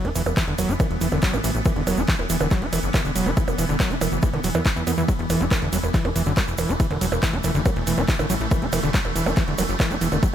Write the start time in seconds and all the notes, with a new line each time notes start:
Already playing: E3 B3
0.05 E1 E4, closed hi-hat, percussion blips
0.15 E1 E3, open hi-hat, ride, shaker
0.26 E1, closed hi-hat, percussion blips, shaker
0.37 E3, kick, clap, closed hi-hat, ride, shaker
0.48 E1 D3, closed hi-hat
0.58 E1 F#3, open hi-hat, ride, percussion blips, shaker
0.69 F#1 E4, closed hi-hat, shaker
0.80 E3, kick, closed hi-hat, ride, percussion blips, shaker
0.91 E1, closed hi-hat
1.01 E1 E3, open hi-hat, ride, shaker
1.12 E1 D3, closed hi-hat, percussion blips, shaker
1.22 F#3, kick, clap, closed hi-hat, ride, shaker
1.33 A1 E4, closed hi-hat, percussion blips, shaker
1.44 A1 E3, open hi-hat, ride, shaker
1.55 A1, closed hi-hat, shaker
1.65 E3, kick, closed hi-hat, ride, percussion blips, shaker
1.76 E1 D3, closed hi-hat
1.87 E1 F#3, open hi-hat, ride, percussion blips, shaker
1.97 E1 E4, shaker
2.08 E3, kick, clap, closed hi-hat, ride, shaker
2.19 E1, closed hi-hat, percussion blips
2.30 E1 E3, open hi-hat, ride, shaker
2.40 E1 D3, closed hi-hat, percussion blips, shaker
2.51 F#3, kick, clap, closed hi-hat, ride, shaker
2.62 E1 E4, closed hi-hat
2.73 E1 E3, open hi-hat, ride, percussion blips, shaker
2.83 F#1, closed hi-hat, shaker
2.94 E3, kick, clap, closed hi-hat, ride, percussion blips, shaker
3.05 E1 D3, closed hi-hat, shaker
3.16 E1 F#3, open hi-hat, ride, shaker
3.26 E1 E4, closed hi-hat, percussion blips, shaker
3.37 E3, kick, closed hi-hat, ride, shaker
3.48 E1, closed hi-hat, percussion blips, shaker
3.58 E1 E3, open hi-hat, ride, shaker
3.69 E1 D3, closed hi-hat, shaker
3.80 F#3, kick, clap, closed hi-hat, ride, percussion blips, shaker
3.91 E1 E4, closed hi-hat, shaker
4.01 E1 E3, open hi-hat, ride, percussion blips, shaker
4.12 F#1, closed hi-hat, shaker
4.22 E3, kick, closed hi-hat, ride, shaker
4.33 E1 D3, closed hi-hat, percussion blips
4.44 E1 F#3, open hi-hat, ride, shaker
4.54 E2 E3, closed hi-hat, percussion blips, shaker
4.66 E3, kick, clap, closed hi-hat, ride, shaker
4.76 E2 E3, closed hi-hat, shaker
4.87 E2 B3, open hi-hat, ride, percussion blips, shaker
4.98 E2 E3, shaker
5.08 F#3 A3, kick, closed hi-hat, ride, shaker
5.19 E1, closed hi-hat
5.30 E1 E3, open hi-hat, ride, percussion blips, shaker
5.41 E1 E4, closed hi-hat, shaker
5.51 E3, kick, clap, closed hi-hat, ride, percussion blips, shaker
5.62 E1 D3, closed hi-hat
5.73 E1 F#3, open hi-hat, ride, shaker
5.83 E1, closed hi-hat, percussion blips, shaker
5.94 E3, kick, clap, closed hi-hat, ride, shaker
6.05 E1 E4, closed hi-hat, percussion blips
6.16 E1 E3, open hi-hat, ride, shaker
6.26 F#1 D3, closed hi-hat, shaker
6.37 F#3, kick, clap, closed hi-hat, ride, percussion blips, shaker
6.48 E1, closed hi-hat, shaker
6.58 E1 E3, open hi-hat, ride, percussion blips, shaker
6.69 E1 E4, shaker
6.80 E3, kick, closed hi-hat, ride, shaker
6.91 E1 D3, closed hi-hat, percussion blips
7.01 E1 F#3, open hi-hat, ride, shaker
7.12 E1, closed hi-hat, percussion blips, shaker
7.23 E3, kick, clap, closed hi-hat, ride, shaker
7.33 E1 E4, closed hi-hat
7.44 E1 E3, open hi-hat, ride, percussion blips, shaker
7.55 F#1 D3, closed hi-hat, shaker
7.65 F#3, kick, closed hi-hat, ride, percussion blips, shaker
7.76 E1, closed hi-hat
7.87 E1 E3, open hi-hat, ride, shaker
7.98 E1 E4, closed hi-hat, percussion blips, shaker
8.08 E3, kick, clap, closed hi-hat, ride, shaker
8.19 A1 D3, closed hi-hat, percussion blips, shaker
8.30 A1 F#3, open hi-hat, ride, shaker
8.41 A1, shaker
8.51 E3, kick, closed hi-hat, ride, percussion blips, shaker
8.62 E1 E4, closed hi-hat
8.72 E1 E3, open hi-hat, ride, percussion blips, shaker
8.83 E1 D3, closed hi-hat, shaker
8.94 F#3, kick, clap, closed hi-hat, ride, shaker
9.05 E1, closed hi-hat, percussion blips
9.16 E1 E3, open hi-hat, ride, shaker
9.26 E1 E4, closed hi-hat, percussion blips, shaker
9.36 E3, kick, clap, closed hi-hat, ride, shaker
9.48 E1 D3, closed hi-hat
9.58 E1 F#3, open hi-hat, ride, percussion blips, shaker
9.69 F#1, closed hi-hat, shaker
9.80 E3, kick, clap, closed hi-hat, ride, percussion blips, shaker
9.91 E1 E4, closed hi-hat, shaker
10.01 E1 E3, open hi-hat, ride, shaker
10.12 E1 D3, closed hi-hat, percussion blips, shaker
10.23 F#3, kick, closed hi-hat, ride, shaker